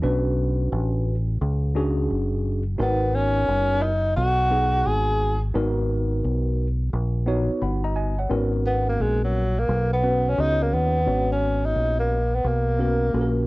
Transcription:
0.02 0.69 B1 loud
0.02 1.14 C#4 medium
0.02 1.15 D4 medium
0.02 1.15 F#4 medium
0.02 1.15 B4 medium
0.72 1.38 A1 medium
1.41 2.07 C#2 loud
1.75 2.62 C#4 medium
1.75 2.62 D4 medium
1.75 2.62 F#4 medium
1.75 2.62 G#4 medium
2.10 2.76 F#1 medium
2.78 3.45 G#1 loud
2.78 3.90 B3 medium
2.78 3.16 B3 medium
2.78 3.90 D#4 medium
2.78 3.90 F#4 medium
2.78 3.91 A#4 medium
3.15 3.81 C#4 loud
3.48 4.14 F#1 medium
3.79 4.16 D#4 loud
3.79 3.84 E4 medium
4.16 4.82 B1 loud
4.16 4.88 F#4 medium
4.50 5.37 B3 medium
4.50 5.37 D#4 medium
4.50 5.38 F#4 medium
4.50 5.38 G#4 medium
4.86 5.52 G#1 medium
4.86 5.43 G#4 medium
5.54 6.21 G#1 medium
5.54 6.66 B3 medium
5.54 6.66 D#4 medium
5.54 6.66 F#4 medium
5.54 6.67 A#4 medium
6.24 6.90 B1 medium
6.93 7.47 A#1 medium
7.26 8.13 B3 medium
7.26 8.14 D#4 medium
7.26 8.14 F#4 medium
7.26 7.62 C#5 medium
7.50 muted fingered electric bass stroke soft
7.62 8.27 G1 medium
7.62 7.84 F#5 soft
7.62 7.83 B5 medium
7.84 7.95 D#5 medium
7.84 7.96 A#5 medium
7.96 8.18 D#5 medium
7.96 8.17 G#5 medium
8.19 8.52 C#5 medium
8.19 8.52 F#5 medium
8.30 8.96 G#1 loud
8.30 9.42 B3 medium
8.30 9.42 C#4 medium
8.30 9.42 F#4 medium
8.30 9.42 A#4 medium
8.67 8.87 B3 medium
8.89 9.03 A#3 medium
9.00 9.65 A#1 medium
9.00 9.23 G#3 medium
9.24 9.61 F#3 medium
9.59 9.92 A#3 loud
9.69 10.34 B1 loud
9.93 10.30 B3 medium
10.02 10.32 B3 medium
10.02 10.33 C#4 medium
10.02 10.33 F#4 medium
10.02 10.33 B4 medium
10.28 10.42 C#4 loud
10.37 10.71 C#2 medium
10.37 10.97 B3 medium
10.37 10.97 C#4 medium
10.37 10.64 D#4 loud
10.37 10.97 F#4 medium
10.37 10.97 C#5 medium
10.62 10.75 A#3 medium
10.73 11.05 D#2 medium
10.73 11.30 B3 loud
11.06 11.72 G#1 medium
11.06 12.18 B3 medium
11.06 12.18 C#4 medium
11.06 12.18 F#4 medium
11.06 12.19 C#5 medium
11.32 11.67 C#4 medium
11.65 11.99 D#4 loud
11.76 12.41 A#1 medium
12.00 12.36 A#3 medium
12.35 12.49 B3 medium
12.44 13.10 B1 medium
12.44 13.47 A#3 medium
12.79 13.09 B3 medium
12.79 13.09 C#4 medium
12.79 13.09 F#4 medium
12.79 13.09 A#4 medium
13.13 13.47 A#1 medium
13.13 13.47 A#3 medium
13.13 13.47 C#4 medium
13.13 13.47 F#4 medium
13.13 13.23 A4 medium
13.21 13.47 A#4 medium

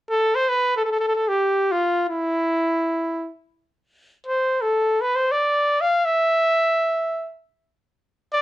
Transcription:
0.10 0.37 A4 medium
0.35 0.50 C5 medium
0.49 0.76 B4 medium
0.77 0.83 A4 medium
0.85 0.91 A4 medium
0.92 0.98 A4 medium
1.00 1.06 A4 medium
1.08 1.14 A4 medium
1.16 1.30 A4 medium
1.28 1.73 G4 medium
1.72 2.08 F4 medium
2.09 3.30 E4 medium
4.27 4.63 C5 medium
4.61 5.02 A4 medium
5.01 5.17 B4 medium
5.15 5.33 C5 medium
5.32 5.83 D5 medium
5.81 6.06 F5 medium
6.05 7.30 E5 medium
8.33 8.42 D5 medium

